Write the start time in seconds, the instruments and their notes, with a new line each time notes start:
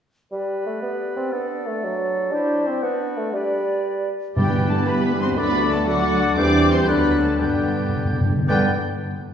0.31 bassoon G3, clarinet G4, oboe B4, flute D5
0.66 bassoon A3
0.82 bassoon B3
1.16 bassoon C4
1.32 bassoon B3, clarinet D4, oboe A4
1.67 bassoon A3
1.84 bassoon F#3
2.32 bassoon D4, clarinet E4, oboe G4, flute C5
2.67 bassoon C4
2.82 bassoon B3, clarinet D4, oboe F#4, flute D5
3.17 bassoon A3
3.33 bassoon G3, clarinet G4, oboe B4, flute D5
4.36 double bass section G2, timpani G2, bassoon E3, cello section G3, viola section G3 D4, french horn section B3 D4, violin section G4 G5, clarinet B4, oboe D5, flute B5
4.49 viola section B3 G4
4.62 viola section G3 D4
4.69 cello section A3, violin section A4 A5
4.75 viola section B3 G4
4.87 viola section G3 D4, cello section B3, clarinet G4, violin section B4 B5, oboe B4
5.00 viola section B3 G4
5.12 viola section G3 D4
5.20 cello section C4, violin section C5 C6
5.25 viola section B3 G4
5.37 double bass section D2, bassoon D3, viola section F#3 D4, french horn section A3, cello section B3, clarinet F#4, violin section B4 B5, oboe D5, flute D6
5.50 viola section A3 F#4
5.62 viola section F#3 D4
5.70 cello section A3, violin section A4 A5
5.75 viola section A3 F#4
5.87 bassoon D3, cello section F#3, viola section F#3 D4, violin section F#4 F#5, clarinet A4, oboe D5, flute D6
6.00 viola section A3 F#4
6.13 viola section F#3 D4
6.25 viola section A3 F#4
6.37 double bass section E2, bassoon E3, viola section G3 C4, french horn section G3 C4, cello section D4, clarinet G4, oboe C5, violin section D5 D6, flute G6
6.71 cello section C4, violin section C5 C6
6.87 double bass section D2, bassoon D3, viola section F#3 D4, french horn section F#3 D4, cello section B3, clarinet A4, violin section B4 B5, oboe D5, flute F#6
7.23 cello section A3, violin section A4 A5
7.39 double bass section G2, timpani G2, bassoon D3, cello section G3, french horn section B3, viola section B3 D4, violin section G4 G5, clarinet B4, oboe D5, flute G6
7.49 timpani G2
7.57 timpani G2
7.65 timpani G2
7.73 timpani G2
7.81 timpani G2
7.89 timpani G2
7.96 timpani G2
8.05 timpani G2
8.13 timpani G2
8.21 timpani G2
8.29 timpani G2
8.37 timpani G2
8.48 timpani G2, double bass section G2, bassoon D3, cello section G3, viola section B3 D4, french horn section B3 D4, clarinet B4, oboe D5, violin section G5, flute G6